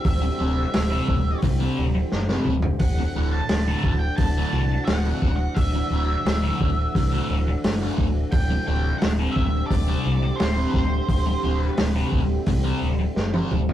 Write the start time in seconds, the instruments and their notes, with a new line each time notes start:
Already playing: harmonium D2 D3, string machine E3 C4 G4
0.05 fingered electric bass D1, lead electric guitar E5, kick, open hi-hat
0.22 muted distorted electric guitar stroke
0.39 fingered electric bass D1, distorted electric guitar C3 G3 C4
0.74 fingered electric bass D1, muted distorted electric guitar stroke, snare, open hi-hat
0.90 distorted electric guitar C3 G3 C4
1.08 fingered electric bass D1, kick
1.42 fingered electric bass C2, muted distorted electric guitar stroke, kick, open hi-hat
1.60 distorted electric guitar C3 G3 C4
1.78 fingered electric bass D1
1.95 muted distorted electric guitar stroke
2.12 fingered electric bass F#1, snare
2.29 distorted electric guitar C3 G3 C4, snare
2.45 fingered electric bass D1, mid tom
2.62 floor tom
2.79 fingered electric bass D1, harmonium D2 D3, string machine E3 D4 F#4, lead electric guitar F#5, kick, open hi-hat
2.99 muted distorted electric guitar stroke
3.16 fingered electric bass D1, distorted electric guitar D2 A2 D3
3.33 lead electric guitar A5
3.49 fingered electric bass D1, muted distorted electric guitar stroke, snare, open hi-hat
3.68 distorted electric guitar D2 A2 D3
3.84 fingered electric bass D1, kick
3.99 lead electric guitar G5
4.17 fingered electric bass D1, lead electric guitar A5, muted distorted electric guitar stroke, kick, open hi-hat
4.37 distorted electric guitar D2 A2 D3
4.53 fingered electric bass C2
4.71 muted distorted electric guitar stroke
4.85 fingered electric bass D1, lead electric guitar F#5, snare, open hi-hat
5.05 distorted electric guitar D2 A2 D3
5.22 fingered electric bass D1, kick
5.36 lead electric guitar F#5
5.54 fingered electric bass D1, lead electric guitar E5, kick, open hi-hat
5.75 muted distorted electric guitar stroke
5.90 fingered electric bass D1, distorted electric guitar D2 A2 D3
6.25 fingered electric bass D1, muted distorted electric guitar stroke, snare, open hi-hat
6.43 distorted electric guitar D2 A2 D3
6.61 fingered electric bass D1, kick
6.95 fingered electric bass C2, muted distorted electric guitar stroke, kick, open hi-hat
7.12 distorted electric guitar D2 A2 D3
7.30 fingered electric bass D1
7.48 muted distorted electric guitar stroke
7.64 fingered electric bass F#1, snare, open hi-hat
7.81 distorted electric guitar D2 A2 D3
7.98 fingered electric bass D1, kick
8.32 fingered electric bass D1, string machine C4 G4, lead electric guitar G5, kick, open hi-hat
8.50 muted distorted electric guitar stroke
8.67 fingered electric bass D1, distorted electric guitar C3 G3 C4, lead electric guitar G5
8.98 lead electric guitar F#5, muted distorted electric guitar stroke, snare, open hi-hat
9.02 fingered electric bass D1
9.19 distorted electric guitar C3 G3 C4
9.32 lead electric guitar E5
9.36 fingered electric bass D1, kick
9.67 lead electric guitar D5, muted distorted electric guitar stroke, kick, open hi-hat
9.71 fingered electric bass D1
9.87 distorted electric guitar C3 G3 C4
10.06 fingered electric bass C2
10.22 muted distorted electric guitar stroke
10.36 lead electric guitar C5, open hi-hat
10.40 fingered electric bass D1, snare
10.56 distorted electric guitar C3 G3 C4
10.70 fingered electric bass D1, lead electric guitar C5, kick
10.75 snare
11.09 fingered electric bass D1, kick, open hi-hat
11.26 muted distorted electric guitar stroke
11.43 fingered electric bass D1, distorted electric guitar C3 G3 C4
11.59 lead electric guitar B4
11.77 fingered electric bass D1, muted distorted electric guitar stroke, snare, open hi-hat
11.95 distorted electric guitar C3 G3 C4
12.12 fingered electric bass D1, kick
12.46 fingered electric bass C2, muted distorted electric guitar stroke, kick, open hi-hat
12.64 distorted electric guitar C3 G3 C4
12.81 fingered electric bass D1
12.99 muted distorted electric guitar stroke
13.16 fingered electric bass F#1, snare
13.34 distorted electric guitar C3 G3 C4, high tom
13.51 fingered electric bass D1, mid tom
13.69 floor tom